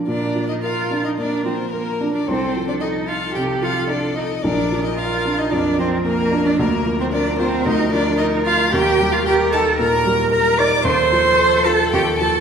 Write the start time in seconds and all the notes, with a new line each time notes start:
Already playing: D4 A#4
0.07 A#2 D4 A#4 D5
0.35 F3
0.49 D#4 D#5
0.62 F4 A#4 F5
0.91 D4
1.04 D#4 D#5
1.18 A#3 D4 A#4 D5
1.45 F3 C4 C5
1.72 A#3 A#4
2.01 D4
2.13 D4 D5
2.27 C2 C4 A4 C5
2.56 F3
2.68 D4 D5
2.81 D#4 A4 D#5
3.08 D#4 F4 F5
3.35 C3 G4 G5
3.62 F3 F4 F5
3.89 D4 A4 D5
4.15 D#4 D#5
4.42 A#1 D4 A#4 D5
4.72 F3
4.85 D#4 D#5
4.97 F4 A#4 F5
5.25 D4
5.38 D#4 D#5
5.51 F2 D4 A#4 D5
5.78 F3 C4 C5
6.04 A#3 A#4
6.31 D4
6.46 D4 D5
6.58 D2 A#3 A#4
6.85 F3
7.00 C4 C5
7.12 D4 A#4 D5
7.38 C4 F4 C5
7.66 D2 D#4 D#5
7.92 F3 D4 D5
8.18 D#4 A#4 D#5
8.46 F4 F5
8.72 D#2 G4 A#4 G5
9.00 G3
9.12 F4 F5
9.25 G4 A#4 G5
9.53 D#4 A4 A5
9.79 A#2 A#4 A#5
10.06 G3
10.31 A#4 A#5
10.58 D#4 D5 D6
10.84 D#2 A4 C5 C6
11.12 F3
11.39 A4
11.64 F4 A4 A5
11.92 D#2 G4 G5
12.18 F3 A4 A5